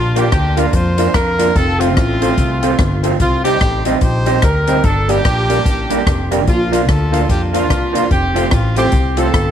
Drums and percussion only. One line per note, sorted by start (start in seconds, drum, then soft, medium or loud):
0.16 closed hi-hat medium
0.32 kick loud
0.32 cross-stick loud
0.32 closed hi-hat medium
0.57 closed hi-hat medium
0.73 kick loud
0.73 closed hi-hat medium
0.98 closed hi-hat medium
1.14 kick loud
1.14 cross-stick loud
1.14 closed hi-hat medium
1.39 closed hi-hat loud
1.56 kick loud
1.56 closed hi-hat medium
1.81 closed hi-hat medium
1.97 kick loud
1.97 cross-stick loud
1.97 closed hi-hat medium
2.22 closed hi-hat medium
2.38 kick loud
2.38 closed hi-hat medium
2.63 closed hi-hat medium
2.79 kick loud
2.79 cross-stick loud
2.79 closed hi-hat medium
3.04 closed hi-hat medium
3.20 kick loud
3.20 closed hi-hat medium
3.45 closed hi-hat medium
3.61 kick loud
3.61 cross-stick loud
3.61 closed hi-hat medium
3.85 closed hi-hat medium
4.01 kick loud
4.01 closed hi-hat medium
4.26 closed hi-hat medium
4.42 kick loud
4.42 cross-stick loud
4.42 closed hi-hat medium
4.67 closed hi-hat medium
4.84 kick loud
4.84 closed hi-hat medium
5.09 closed hi-hat medium
5.25 kick loud
5.25 cross-stick loud
5.25 closed hi-hat medium
5.50 closed hi-hat medium
5.66 kick loud
5.66 closed hi-hat medium
5.90 closed hi-hat medium
6.07 kick loud
6.07 cross-stick loud
6.07 closed hi-hat medium
6.32 closed hi-hat medium
6.47 kick loud
6.47 closed hi-hat medium
6.73 closed hi-hat medium
6.89 kick loud
6.89 cross-stick loud
6.89 closed hi-hat medium
7.14 closed hi-hat medium
7.29 kick loud
7.29 closed hi-hat medium
7.54 closed hi-hat medium
7.70 kick loud
7.70 cross-stick loud
7.70 closed hi-hat medium
7.95 closed hi-hat medium
8.11 kick loud
8.11 closed hi-hat medium
8.36 closed hi-hat medium
8.51 kick loud
8.51 cross-stick loud
8.51 closed hi-hat medium
8.76 closed hi-hat medium
8.92 kick loud
8.92 closed hi-hat medium
9.17 closed hi-hat medium
9.34 kick loud
9.34 cross-stick loud
9.34 closed hi-hat medium